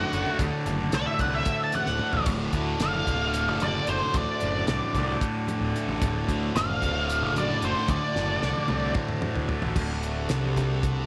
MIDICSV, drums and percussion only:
0, 0, Header, 1, 2, 480
1, 0, Start_track
1, 0, Tempo, 535236
1, 362, Time_signature, 7, 3, 24, 8
1, 9920, End_track
2, 0, Start_track
2, 0, Title_t, "Drums"
2, 116, Note_on_c, 9, 42, 65
2, 127, Note_on_c, 9, 64, 27
2, 206, Note_off_c, 9, 42, 0
2, 216, Note_off_c, 9, 64, 0
2, 237, Note_on_c, 9, 64, 79
2, 327, Note_off_c, 9, 64, 0
2, 351, Note_on_c, 9, 36, 109
2, 353, Note_on_c, 9, 42, 87
2, 363, Note_on_c, 9, 63, 98
2, 441, Note_off_c, 9, 36, 0
2, 442, Note_off_c, 9, 42, 0
2, 452, Note_off_c, 9, 63, 0
2, 593, Note_on_c, 9, 42, 64
2, 600, Note_on_c, 9, 38, 33
2, 682, Note_off_c, 9, 42, 0
2, 689, Note_off_c, 9, 38, 0
2, 827, Note_on_c, 9, 42, 90
2, 835, Note_on_c, 9, 38, 103
2, 917, Note_off_c, 9, 42, 0
2, 924, Note_off_c, 9, 38, 0
2, 959, Note_on_c, 9, 63, 74
2, 1049, Note_off_c, 9, 63, 0
2, 1067, Note_on_c, 9, 42, 63
2, 1071, Note_on_c, 9, 36, 76
2, 1088, Note_on_c, 9, 64, 88
2, 1157, Note_off_c, 9, 42, 0
2, 1160, Note_off_c, 9, 36, 0
2, 1177, Note_off_c, 9, 64, 0
2, 1304, Note_on_c, 9, 42, 97
2, 1310, Note_on_c, 9, 36, 105
2, 1334, Note_on_c, 9, 64, 32
2, 1394, Note_off_c, 9, 42, 0
2, 1400, Note_off_c, 9, 36, 0
2, 1424, Note_off_c, 9, 64, 0
2, 1450, Note_on_c, 9, 64, 26
2, 1540, Note_off_c, 9, 64, 0
2, 1545, Note_on_c, 9, 42, 70
2, 1552, Note_on_c, 9, 38, 34
2, 1571, Note_on_c, 9, 63, 87
2, 1635, Note_off_c, 9, 42, 0
2, 1642, Note_off_c, 9, 38, 0
2, 1661, Note_off_c, 9, 63, 0
2, 1672, Note_on_c, 9, 38, 55
2, 1692, Note_on_c, 9, 64, 29
2, 1761, Note_off_c, 9, 38, 0
2, 1782, Note_off_c, 9, 64, 0
2, 1788, Note_on_c, 9, 47, 67
2, 1878, Note_off_c, 9, 47, 0
2, 1908, Note_on_c, 9, 43, 101
2, 1931, Note_on_c, 9, 64, 67
2, 1998, Note_off_c, 9, 43, 0
2, 2020, Note_off_c, 9, 64, 0
2, 2025, Note_on_c, 9, 42, 88
2, 2025, Note_on_c, 9, 49, 83
2, 2031, Note_on_c, 9, 36, 107
2, 2051, Note_on_c, 9, 63, 90
2, 2115, Note_off_c, 9, 42, 0
2, 2115, Note_off_c, 9, 49, 0
2, 2121, Note_off_c, 9, 36, 0
2, 2141, Note_off_c, 9, 63, 0
2, 2266, Note_on_c, 9, 42, 67
2, 2270, Note_on_c, 9, 36, 70
2, 2356, Note_off_c, 9, 42, 0
2, 2360, Note_off_c, 9, 36, 0
2, 2508, Note_on_c, 9, 42, 93
2, 2515, Note_on_c, 9, 38, 98
2, 2598, Note_off_c, 9, 42, 0
2, 2605, Note_off_c, 9, 38, 0
2, 2642, Note_on_c, 9, 63, 76
2, 2642, Note_on_c, 9, 64, 29
2, 2731, Note_off_c, 9, 63, 0
2, 2731, Note_off_c, 9, 64, 0
2, 2754, Note_on_c, 9, 36, 78
2, 2756, Note_on_c, 9, 42, 69
2, 2766, Note_on_c, 9, 64, 89
2, 2843, Note_off_c, 9, 36, 0
2, 2846, Note_off_c, 9, 42, 0
2, 2856, Note_off_c, 9, 64, 0
2, 2993, Note_on_c, 9, 42, 94
2, 3000, Note_on_c, 9, 38, 36
2, 3002, Note_on_c, 9, 64, 30
2, 3082, Note_off_c, 9, 42, 0
2, 3089, Note_off_c, 9, 38, 0
2, 3091, Note_off_c, 9, 64, 0
2, 3230, Note_on_c, 9, 42, 72
2, 3237, Note_on_c, 9, 38, 36
2, 3248, Note_on_c, 9, 63, 91
2, 3248, Note_on_c, 9, 64, 28
2, 3319, Note_off_c, 9, 42, 0
2, 3327, Note_off_c, 9, 38, 0
2, 3337, Note_off_c, 9, 63, 0
2, 3337, Note_off_c, 9, 64, 0
2, 3470, Note_on_c, 9, 42, 63
2, 3560, Note_off_c, 9, 42, 0
2, 3607, Note_on_c, 9, 64, 73
2, 3697, Note_off_c, 9, 64, 0
2, 3712, Note_on_c, 9, 42, 90
2, 3715, Note_on_c, 9, 36, 112
2, 3725, Note_on_c, 9, 63, 103
2, 3801, Note_off_c, 9, 42, 0
2, 3805, Note_off_c, 9, 36, 0
2, 3814, Note_off_c, 9, 63, 0
2, 3950, Note_on_c, 9, 42, 63
2, 4039, Note_off_c, 9, 42, 0
2, 4191, Note_on_c, 9, 42, 86
2, 4198, Note_on_c, 9, 38, 113
2, 4281, Note_off_c, 9, 42, 0
2, 4288, Note_off_c, 9, 38, 0
2, 4320, Note_on_c, 9, 63, 81
2, 4320, Note_on_c, 9, 64, 31
2, 4410, Note_off_c, 9, 63, 0
2, 4410, Note_off_c, 9, 64, 0
2, 4435, Note_on_c, 9, 36, 78
2, 4439, Note_on_c, 9, 42, 60
2, 4445, Note_on_c, 9, 64, 98
2, 4446, Note_on_c, 9, 38, 33
2, 4524, Note_off_c, 9, 36, 0
2, 4528, Note_off_c, 9, 42, 0
2, 4534, Note_off_c, 9, 64, 0
2, 4535, Note_off_c, 9, 38, 0
2, 4675, Note_on_c, 9, 36, 101
2, 4677, Note_on_c, 9, 42, 88
2, 4765, Note_off_c, 9, 36, 0
2, 4767, Note_off_c, 9, 42, 0
2, 4910, Note_on_c, 9, 63, 103
2, 4910, Note_on_c, 9, 64, 33
2, 4918, Note_on_c, 9, 42, 69
2, 5000, Note_off_c, 9, 63, 0
2, 5000, Note_off_c, 9, 64, 0
2, 5008, Note_off_c, 9, 42, 0
2, 5039, Note_on_c, 9, 64, 31
2, 5128, Note_off_c, 9, 64, 0
2, 5164, Note_on_c, 9, 42, 61
2, 5171, Note_on_c, 9, 38, 34
2, 5253, Note_off_c, 9, 42, 0
2, 5260, Note_off_c, 9, 38, 0
2, 5283, Note_on_c, 9, 64, 77
2, 5373, Note_off_c, 9, 64, 0
2, 5395, Note_on_c, 9, 42, 95
2, 5396, Note_on_c, 9, 36, 115
2, 5400, Note_on_c, 9, 63, 98
2, 5484, Note_off_c, 9, 42, 0
2, 5486, Note_off_c, 9, 36, 0
2, 5490, Note_off_c, 9, 63, 0
2, 5637, Note_on_c, 9, 36, 71
2, 5641, Note_on_c, 9, 42, 68
2, 5726, Note_off_c, 9, 36, 0
2, 5730, Note_off_c, 9, 42, 0
2, 5881, Note_on_c, 9, 42, 95
2, 5888, Note_on_c, 9, 38, 106
2, 5970, Note_off_c, 9, 42, 0
2, 5978, Note_off_c, 9, 38, 0
2, 6008, Note_on_c, 9, 63, 81
2, 6008, Note_on_c, 9, 64, 35
2, 6098, Note_off_c, 9, 63, 0
2, 6098, Note_off_c, 9, 64, 0
2, 6116, Note_on_c, 9, 36, 75
2, 6119, Note_on_c, 9, 64, 102
2, 6121, Note_on_c, 9, 42, 70
2, 6206, Note_off_c, 9, 36, 0
2, 6209, Note_off_c, 9, 64, 0
2, 6211, Note_off_c, 9, 42, 0
2, 6354, Note_on_c, 9, 64, 32
2, 6363, Note_on_c, 9, 42, 98
2, 6444, Note_off_c, 9, 64, 0
2, 6452, Note_off_c, 9, 42, 0
2, 6600, Note_on_c, 9, 63, 91
2, 6600, Note_on_c, 9, 64, 30
2, 6602, Note_on_c, 9, 42, 72
2, 6690, Note_off_c, 9, 63, 0
2, 6690, Note_off_c, 9, 64, 0
2, 6692, Note_off_c, 9, 42, 0
2, 6730, Note_on_c, 9, 64, 32
2, 6820, Note_off_c, 9, 64, 0
2, 6836, Note_on_c, 9, 42, 64
2, 6925, Note_off_c, 9, 42, 0
2, 6952, Note_on_c, 9, 64, 74
2, 7041, Note_off_c, 9, 64, 0
2, 7066, Note_on_c, 9, 63, 105
2, 7069, Note_on_c, 9, 42, 92
2, 7072, Note_on_c, 9, 36, 110
2, 7156, Note_off_c, 9, 63, 0
2, 7159, Note_off_c, 9, 42, 0
2, 7161, Note_off_c, 9, 36, 0
2, 7196, Note_on_c, 9, 64, 28
2, 7286, Note_off_c, 9, 64, 0
2, 7319, Note_on_c, 9, 38, 61
2, 7408, Note_off_c, 9, 38, 0
2, 7436, Note_on_c, 9, 64, 32
2, 7526, Note_off_c, 9, 64, 0
2, 7556, Note_on_c, 9, 38, 66
2, 7645, Note_off_c, 9, 38, 0
2, 7678, Note_on_c, 9, 63, 73
2, 7767, Note_off_c, 9, 63, 0
2, 7784, Note_on_c, 9, 48, 73
2, 7788, Note_on_c, 9, 64, 92
2, 7874, Note_off_c, 9, 48, 0
2, 7877, Note_off_c, 9, 64, 0
2, 8022, Note_on_c, 9, 47, 84
2, 8026, Note_on_c, 9, 36, 112
2, 8111, Note_off_c, 9, 47, 0
2, 8116, Note_off_c, 9, 36, 0
2, 8148, Note_on_c, 9, 45, 71
2, 8238, Note_off_c, 9, 45, 0
2, 8258, Note_on_c, 9, 63, 85
2, 8267, Note_on_c, 9, 45, 91
2, 8348, Note_off_c, 9, 63, 0
2, 8357, Note_off_c, 9, 45, 0
2, 8389, Note_on_c, 9, 43, 76
2, 8479, Note_off_c, 9, 43, 0
2, 8508, Note_on_c, 9, 43, 96
2, 8512, Note_on_c, 9, 64, 26
2, 8597, Note_off_c, 9, 43, 0
2, 8601, Note_off_c, 9, 64, 0
2, 8627, Note_on_c, 9, 43, 88
2, 8637, Note_on_c, 9, 64, 68
2, 8717, Note_off_c, 9, 43, 0
2, 8726, Note_off_c, 9, 64, 0
2, 8751, Note_on_c, 9, 36, 104
2, 8752, Note_on_c, 9, 63, 99
2, 8753, Note_on_c, 9, 49, 99
2, 8841, Note_off_c, 9, 36, 0
2, 8841, Note_off_c, 9, 63, 0
2, 8842, Note_off_c, 9, 49, 0
2, 8995, Note_on_c, 9, 42, 65
2, 9085, Note_off_c, 9, 42, 0
2, 9228, Note_on_c, 9, 42, 87
2, 9235, Note_on_c, 9, 38, 101
2, 9317, Note_off_c, 9, 42, 0
2, 9325, Note_off_c, 9, 38, 0
2, 9359, Note_on_c, 9, 63, 80
2, 9359, Note_on_c, 9, 64, 31
2, 9448, Note_off_c, 9, 63, 0
2, 9448, Note_off_c, 9, 64, 0
2, 9474, Note_on_c, 9, 36, 71
2, 9481, Note_on_c, 9, 42, 67
2, 9481, Note_on_c, 9, 64, 103
2, 9488, Note_on_c, 9, 38, 34
2, 9564, Note_off_c, 9, 36, 0
2, 9570, Note_off_c, 9, 42, 0
2, 9570, Note_off_c, 9, 64, 0
2, 9577, Note_off_c, 9, 38, 0
2, 9714, Note_on_c, 9, 36, 107
2, 9715, Note_on_c, 9, 42, 94
2, 9725, Note_on_c, 9, 64, 33
2, 9804, Note_off_c, 9, 36, 0
2, 9805, Note_off_c, 9, 42, 0
2, 9815, Note_off_c, 9, 64, 0
2, 9920, End_track
0, 0, End_of_file